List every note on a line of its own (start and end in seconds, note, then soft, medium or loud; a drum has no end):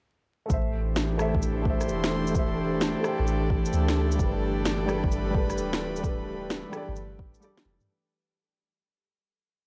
0.46 1.15 A3 medium
0.46 1.17 A4 medium
0.50 1.33 A1 medium
0.50 7.89 E3 medium
0.50 7.90 A4 medium
0.50 1.18 C5 medium
0.50 1.19 E5 medium
0.50 kick loud
0.50 shaker medium
0.62 7.89 G4 medium
0.68 7.89 A3 medium
0.68 7.89 D4 medium
0.96 snare loud
0.96 shaker medium
1.17 1.60 A3 medium
1.17 1.63 A4 medium
1.17 1.64 C5 medium
1.17 cross-stick medium
1.17 shaker soft
1.22 1.65 E5 medium
1.26 4.19 C5 medium
1.35 1.90 A1 medium
1.35 kick loud
1.42 shaker medium
1.62 2.29 A3 medium
1.62 2.32 A4 medium
1.62 kick loud
1.67 2.34 C5 medium
1.67 2.35 E5 medium
1.81 cross-stick soft
1.81 shaker medium
1.89 2.94 E1 medium
1.89 shaker medium
2.04 snare loud
2.27 2.99 A3 medium
2.27 shaker medium
2.34 3.01 A4 medium
2.34 3.03 C5 medium
2.34 kick loud
2.34 shaker medium
2.39 3.04 E5 medium
2.81 snare loud
2.81 shaker medium
3.00 4.15 A3 medium
3.00 4.17 A4 medium
3.04 4.18 C5 medium
3.04 cross-stick medium
3.04 shaker soft
3.08 4.20 G5 medium
3.19 3.64 A1 medium
3.27 shaker medium
3.50 kick loud
3.65 shaker medium
3.73 4.18 D2 loud
3.73 shaker medium
3.88 snare loud
4.11 shaker medium
4.16 5.02 G1 medium
4.16 4.85 G3 medium
4.16 4.86 G4 medium
4.16 kick loud
4.16 shaker medium
4.21 4.87 A4 medium
4.21 4.89 B4 medium
4.41 7.89 B4 medium
4.65 snare loud
4.65 shaker medium
4.86 5.29 G3 medium
4.86 5.32 G4 medium
4.86 5.33 A4 medium
4.86 cross-stick medium
4.86 shaker soft
4.90 5.34 B4 loud
5.04 5.59 G1 medium
5.04 kick loud
5.12 shaker medium
5.31 5.98 G3 medium
5.31 6.01 G4 medium
5.31 kick loud
5.36 6.03 A4 medium
5.36 6.04 B4 medium
5.50 cross-stick soft
5.50 shaker medium
5.58 6.63 D1 medium
5.58 shaker medium
5.73 snare loud
5.96 6.68 G3 medium
5.96 shaker medium
6.03 6.70 G4 medium
6.03 6.72 A4 medium
6.03 kick loud
6.03 shaker soft
6.08 6.73 B4 medium
6.50 snare loud
6.50 shaker medium
6.69 7.39 G3 medium
6.69 7.40 G4 medium
6.69 cross-stick medium
6.69 shaker soft
6.75 7.41 A4 medium
6.75 7.43 D5 medium
6.88 7.33 G1 medium
6.96 shaker medium
7.19 kick loud
7.34 shaker medium
7.40 7.86 G3 medium
7.40 7.86 G4 medium
7.40 7.87 A4 medium
7.40 shaker medium
7.44 7.88 D5 medium
7.57 snare loud
7.65 7.79 F1 loud
7.81 7.88 G2 medium
7.81 shaker medium